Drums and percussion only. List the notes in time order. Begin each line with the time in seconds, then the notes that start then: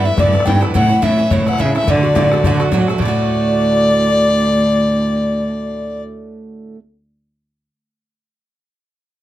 0.18 bodhran
0.35 bodhran
0.40 bodhran
0.47 bodhran
0.63 bodhran
0.75 bodhran
1.03 bodhran
1.31 bodhran
1.47 bodhran
1.53 bodhran
1.60 bodhran
1.76 bodhran
1.88 bodhran
2.16 bodhran
2.32 bodhran
2.44 bodhran
2.60 bodhran
2.72 bodhran
2.88 bodhran
3.00 bodhran